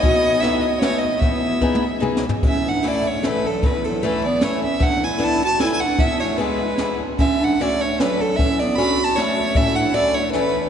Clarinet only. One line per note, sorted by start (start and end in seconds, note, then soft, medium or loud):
0.03 0.41 B3 medium
0.41 0.63 B3 medium
0.63 0.83 B3 medium
0.81 1.04 A3 medium
1.02 1.21 B3 medium
1.21 2.02 B3 medium
2.47 2.71 C#4 medium
2.70 2.90 D4 medium
2.88 3.11 A3 medium
3.11 3.27 A3 medium
3.26 3.50 E3 medium
3.48 3.67 F#3 medium
3.65 3.88 E3 medium
3.87 4.07 F#3 medium
4.05 4.25 E3 medium
4.26 4.45 B3 medium
4.43 4.63 A3 medium
4.64 4.85 C#4 medium
4.83 5.05 D4 medium
5.04 5.22 E4 medium
5.22 5.42 E4 loud
5.44 5.65 F#4 medium
5.64 5.65 E4 medium
5.64 5.70 E4 medium
5.74 5.86 E4 medium
5.85 6.04 D4 medium
6.02 6.24 B3 medium
6.23 6.42 A3 medium
6.41 7.01 G#3 medium
7.18 7.43 C#4 medium
7.42 7.62 D4 medium
7.60 7.82 A3 medium
7.82 8.01 A3 medium
8.00 8.21 F#3 medium
8.21 8.39 F#3 medium
8.38 8.63 C#4 medium
8.61 8.80 B3 medium
8.78 9.05 F#4 medium
9.05 9.19 F#4 medium
9.18 9.58 A3 medium
9.57 9.78 C#4 medium
9.76 9.95 D4 medium
9.93 10.15 A3 medium
10.15 10.35 A3 medium
10.34 10.69 E3 medium